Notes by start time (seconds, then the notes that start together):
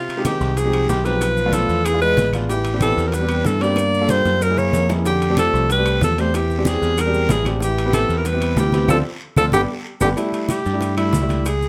Already playing: C3 F4
0.09 high conga, high timbale, maracas
0.17 G#3 C4 D#4 G4
0.25 D#3 G4, high bongo, high conga, high timbale, short guiro, claves, maracas
0.41 C2, high conga, short guiro, maracas
0.57 F3 G#4, high bongo, high conga, high timbale, long guiro, maracas
0.65 G#3 C4 D#4 G4
0.73 high conga, high timbale, claves, maracas
0.89 B1 D#3 G4, high bongo, low bongo, high conga, short guiro, maracas
1.05 F3 G#3 C4 D#4 G4 B4, high timbale, short guiro, maracas
1.21 high bongo, high conga, high timbale, long guiro, claves, maracas
1.37 high bongo, high conga, maracas
1.46 A3 B3 D4 F4
1.53 F3 A4, high bongo, high conga, high timbale, short guiro, maracas
1.69 E2, high conga, short guiro, maracas
1.85 E3 G#4, high bongo, high conga, high timbale, long guiro, claves, maracas
1.93 G#3 B3 D4 F4
2.01 G#3 B4, high bongo, high conga, maracas
2.17 A1, high bongo, low bongo, high conga, high timbale, short guiro, maracas
2.33 G#3 B3 D4 F4, high bongo, high conga, high timbale, short guiro, claves, maracas
2.49 E3 G4, high bongo, high conga, high timbale, long guiro, maracas
2.65 high conga, high timbale, maracas
2.74 B3 C4 D4 G4
2.81 E3 A4, high bongo, high conga, high timbale, short guiro, claves, maracas
2.97 E2, high conga, short guiro, maracas
3.07 F3 A#4
3.12 G3 B4, high bongo, high conga, high timbale, long guiro, maracas
3.21 B3 C4 D4 G4
3.29 high conga, high timbale, claves, maracas
3.45 G2 E3 A4, high bongo, low bongo, high conga, short guiro, maracas
3.61 A#3 B3 C4 D4 G4 D5, high timbale, short guiro, maracas
3.76 high bongo, high conga, high timbale, long guiro, claves, maracas
3.93 high conga, maracas
4.01 A#3 D4 F4 A4
4.09 G3 C5, high bongo, high conga, high timbale, short guiro, maracas
4.25 F#2, high bongo, high conga, short guiro, maracas
4.40 F#3 A#4, high conga, high timbale, long guiro, claves, maracas
4.50 A#3 C#4 E4 G#4
4.56 A#3 C#5, low bongo, high conga, maracas
4.73 F2, low bongo, high conga, low timbale, short guiro, maracas
4.89 A#3 C#4 E4 G#4, low bongo, low timbale, short guiro, claves, maracas
5.05 D3 G4, high bongo, high conga, high timbale, long guiro, maracas
5.21 high conga, high timbale, maracas
5.30 A3 C4 D4 G4
5.37 F3 A4, high bongo, high conga, high timbale, short guiro, claves, maracas
5.53 C2, high conga, short guiro, maracas
5.69 G3 B4, high bongo, high conga, high timbale, long guiro, maracas
5.77 A3 C4 D4 G4
5.86 high conga, high timbale, claves, maracas
6.01 E2 F3 A4, high bongo, low bongo, high conga, short guiro, maracas
6.18 A3 C4 D4 G4 C5, high timbale, short guiro, maracas
6.34 E3 G4, high bongo, high conga, high timbale, long guiro, claves, maracas
6.50 high bongo, high conga, maracas
6.58 G#3 C4 D4 G4
6.65 E3 G#4, high bongo, high conga, high timbale, short guiro, maracas
6.82 E2, high conga, short guiro, maracas
6.98 G3 A#4, high bongo, high conga, high timbale, long guiro, claves, maracas
7.06 G#3 C4 D4 G4
7.13 high bongo, high conga, maracas
7.29 A1 E3 G#4, high bongo, low bongo, high conga, high timbale, low timbale, short guiro, maracas
7.45 G#3 C4 D4 G4, high bongo, high conga, high timbale, short guiro, claves, maracas
7.61 E3 G4, high bongo, high conga, high timbale, long guiro, maracas
7.78 high conga, high timbale, maracas
7.86 B3 C4 E4 G4
7.93 E3 A4, high bongo, high conga, high timbale, short guiro, claves, maracas
8.09 E2, high conga, short guiro, maracas
8.18 F3 A#4
8.24 G3 B4, high bongo, high conga, high timbale, long guiro, maracas
8.33 B3 C4 E4 G4
8.41 high conga, high timbale, claves, maracas
8.57 D2 E3 G4, high bongo, low bongo, high conga, low timbale, short guiro, maracas
8.72 B3 C4 E4 G4, high conga, high timbale, short guiro, maracas
8.88 D2 F3 C4 D4 F4 A4, high bongo, high conga, high timbale, long guiro, claves, maracas
9.36 D2 F3 C4 D4 F4 A4, high bongo, high conga, high timbale, long guiro, claves, maracas
9.52 G1 D3 G3 B3 D4 G4, high bongo, high conga, high timbale, long guiro, claves, maracas
10.00 G1 D3 G3 B3 D4 G4, high bongo, high conga, high timbale, long guiro, claves, maracas
10.16 G3 A3 D4 E4, high bongo, high conga, high timbale, long guiro, maracas
10.32 high conga, high timbale, maracas
10.49 G4, high bongo, high conga, high timbale, short guiro, claves, maracas
10.65 G2, high conga, short guiro, maracas
10.73 G3 A3 D4 E4
10.81 high bongo, high conga, high timbale, long guiro, maracas
10.97 G3 A3 D4 E4, high conga, high timbale, claves, maracas
11.13 C#2, high bongo, low bongo, high conga, low timbale, short guiro, maracas
11.21 G3 A3 D4 E4
11.29 high conga, high timbale, short guiro, maracas
11.45 G#4, high bongo, high conga, high timbale, long guiro, claves, maracas
11.62 high bongo, high conga, maracas